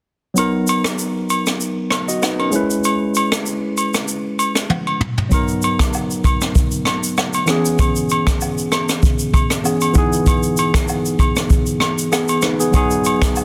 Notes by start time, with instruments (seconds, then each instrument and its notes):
0.34 tine electric piano F#3 B3 D#4, high agogo, shaker
0.39 tine electric piano A#4
0.67 high agogo, shaker
0.84 cross-stick, shaker
0.98 shaker
1.30 high agogo, shaker
1.47 cross-stick, shaker
1.60 shaker
1.91 cross-stick, high agogo, shaker
2.08 tine electric piano F#4 D#5, shaker
2.22 tine electric piano D#4 B4, cross-stick, low woodblock, shaker
2.39 tine electric piano C#4 A#4, high agogo
2.51 tine electric piano G#3 C#4 E4, shaker
2.56 tine electric piano B4
2.71 shaker
2.84 high agogo, shaker
3.15 high agogo, shaker
3.32 cross-stick, shaker
3.46 shaker
3.77 high agogo, shaker
3.94 cross-stick, shaker
4.08 shaker
4.39 high agogo, shaker
4.55 cross-stick, shaker
4.70 high tom, low woodblock
4.87 high agogo
5.01 mid tom
5.18 floor tom
5.29 tine electric piano F#3 B3 D#4, kick, high agogo, shaker
5.34 tine electric piano A#4
5.48 shaker
5.62 high agogo, shaker
5.79 kick, cross-stick, shaker
5.93 low woodblock, shaker
6.11 shaker
6.24 kick, high agogo, shaker
6.41 cross-stick, shaker
6.55 kick, shaker
6.71 shaker
6.85 cross-stick, high agogo, shaker
7.04 shaker
7.18 cross-stick, low woodblock, shaker
7.33 high agogo, shaker
7.45 tine electric piano E3 B3 C#4, cross-stick, shaker
7.50 tine electric piano G#4
7.65 shaker
7.79 kick, high agogo, shaker
7.96 shaker
8.09 high agogo, shaker
8.27 kick, cross-stick, shaker
8.41 low woodblock, shaker
8.58 shaker
8.72 cross-stick, high agogo, shaker
8.89 cross-stick, shaker
9.03 kick, shaker
9.19 shaker
9.34 kick, high agogo, shaker
9.50 cross-stick, shaker
9.63 tine electric piano E3 B3 C#4 G#4, low woodblock, shaker
9.81 high agogo, shaker
9.93 tine electric piano E3 B3 D#4, kick, shaker
9.98 tine electric piano G#4
10.13 shaker
10.26 kick, high agogo, shaker
10.43 shaker
10.57 high agogo, shaker
10.74 kick, cross-stick, shaker
10.88 low woodblock, shaker
11.05 shaker
11.19 kick, high agogo, shaker
11.36 cross-stick, shaker
11.50 kick, shaker
11.66 shaker
11.80 cross-stick, high agogo, shaker
11.99 shaker
12.12 tine electric piano B3 G#4, cross-stick, low woodblock, shaker
12.28 high agogo, shaker
12.42 tine electric piano D#4 B4, cross-stick, shaker
12.60 tine electric piano B3 G#4, shaker
12.71 tine electric piano F#3 B3 D#4, kick, high agogo, shaker
12.76 tine electric piano G#4
12.91 shaker
13.04 high agogo, shaker
13.22 kick, cross-stick, shaker
13.36 low woodblock, shaker